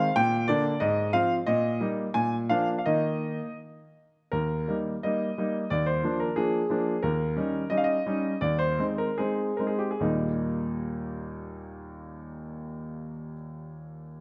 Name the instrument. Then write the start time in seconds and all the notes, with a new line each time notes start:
grand piano
Already playing: F5
0.16 A#2 G5
0.48 D3 A#3 D4 D5
0.80 G#2 D#5
1.13 F3 C4 F5
1.47 A#2 D#5
1.80 G3 A#3 D#4
2.14 A#2 G#5
2.49 F3 A#3 D4 F5
2.78 F5
2.86 D#3 A#3 D#4 D#5
4.32 D#2 A#4
4.68 G3 A#3 D#4
5.03 G3 A#3 D#4 D#5
5.38 G3 A#3 D#4
5.70 D#2 D5
5.86 C5
6.03 F3 A#3 D4
6.20 A#4
6.36 F3 A#3 D4 G#4
6.70 F3 A#3 D4
7.03 D#2 A#4
7.36 G3 C#4 D#4
7.70 G3 C#4 D#4 D#5
7.77 F5
7.84 D#5
8.06 G3 C#4 D#4
8.41 D#2 D5
8.59 C5
8.78 G#3 C4 D#4
8.98 A#4
9.18 G#3 C4 D#4 G#4
9.57 G#3 C4 D#4 A#4
9.67 G#4
9.79 G4
9.91 G#4
10.00 D#2 A#2 G3 A#3 D#4